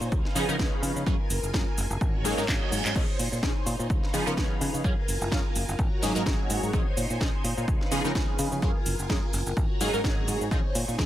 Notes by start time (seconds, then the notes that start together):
Already playing: D#4 C5 G#5
0.01 A#2, cabasa
0.12 C#2 B4 F5, kick, cabasa
0.25 snare
0.35 C#3 F3 B3 C#4 D#4 G#4, open hi-hat, cabasa
0.48 C#3 F3 B3 C#4 D#4 A#4, cabasa
0.59 C#2 F3 B3 C#4 G#4, kick, snare, cabasa
0.83 C#3, open hi-hat, cabasa
0.96 C#3, cabasa
1.06 F#2 F#3 A#3 C#4 F4 G#4 A#4 G#5, kick, cabasa
1.30 F#1, open hi-hat, cabasa
1.43 F#1, cabasa
1.53 F#2 F#3 A#3 C#4 F4 G#4, kick, snare, cabasa
1.78 F#1, open hi-hat, cabasa
1.90 F#1, cabasa
2.01 G#1 F#4 C#5 A#5, kick, reverse cymbal, cabasa
2.24 G#2 F#3 A#3 C#4 D#4 G#4, open hi-hat, cabasa
2.37 G#2 F#3 A#3 C#4 D#4 A#4, snare, cabasa
2.48 G#1 F#3 A#3 C#4 G#4, kick, snare, clap, cabasa
2.72 G#2, open hi-hat, cabasa
2.85 G#2, clap, cabasa
2.96 A#1 F3 C4 C#4 D#4 G#4 C5 G#5, kick, crash, cabasa
3.19 A#2, open hi-hat, cabasa
3.32 A#2, cabasa
3.43 A#1 F3 C4 C#4 D#4 G#4, kick, snare, cabasa
3.66 A#2, open hi-hat, cabasa
3.79 A#2, cabasa
3.90 C#2 B4 F5, kick, cabasa
4.03 snare
4.13 C#3 F3 B3 C#4 D#4 G#4, open hi-hat, cabasa
4.26 C#3 F3 B3 C#4 D#4 A#4, cabasa
4.37 C#2 F3 B3 C#4 D#4 G#4, kick, snare, cabasa
4.61 C#3, open hi-hat, cabasa
4.74 C#3, cabasa
4.84 F#2 F#3 A#3 C#4 F4 G#4 A#4 G#5, kick, cabasa
5.08 F#1, open hi-hat, cabasa
5.21 F#1, cabasa
5.32 F#2 F#3 A#3 C#4 F4 G#4, kick, snare, cabasa
5.56 F#1, open hi-hat, cabasa
5.68 F#1, cabasa
5.79 G#1 F#4 C#5 A#5, kick, cabasa
6.02 G#2 F#3 A#3 C#4 D#4 G#4, open hi-hat, cabasa
6.15 G#2 F#3 A#3 C#4 D#4 A#4, cabasa
6.26 G#1 A#3 C#4 D#4 G#4, kick, snare, cabasa
6.50 G#2, open hi-hat, cabasa
6.63 G#2, cabasa
6.73 A#1 F3 C4 C#4 D#4 G#4 C5 G#5, kick, cabasa
6.97 A#2, open hi-hat, cabasa
7.10 A#2, cabasa
7.21 A#1 F3 C4 C#4 D#4 G#4, kick, snare, cabasa
7.44 A#2, open hi-hat, cabasa
7.57 A#2, cabasa
7.68 B4 F5, kick, cabasa
7.81 snare
7.91 C#3 F3 B3 C#4 D#4 G#4, open hi-hat, cabasa
8.04 C#3 F3 B3 C#4 D#4 A#4, cabasa
8.15 C#2 F3 B3 C#4 D#4 G#4, kick, snare, cabasa
8.39 C#3, open hi-hat, cabasa
8.52 C#3, cabasa
8.62 F#2 F#3 A#3 C#4 F4 G#4 A#4 G#5, kick, cabasa
8.86 F#1, open hi-hat, cabasa
8.99 F#1, cabasa
9.10 F#2 F#3 A#3 C#4 F4 G#4, kick, snare, cabasa
9.33 F#1, open hi-hat, cabasa
9.46 F#1, cabasa
9.56 G#1 F#4 C#5 A#5, kick, cabasa
9.70 muted fingered electric bass stroke
9.81 G#2 F#3 A#3 C#4 D#4 G#4, open hi-hat, cabasa
9.93 G#2 F#3 A#3 C#4 D#4 A#4, cabasa
10.04 G#1 F#3 A#3 C#4 D#4 G#4, kick, snare, cabasa
10.28 G#2, open hi-hat, cabasa
10.41 G#2, cabasa
10.51 A#1 F3 C4 C#4 D#4 G#4 C5 G#5, kick, cabasa
10.75 A#2, open hi-hat, cabasa
10.88 A#2, cabasa
10.98 A#1 F3 C4 C#4 D#4 G#4, kick, snare, cabasa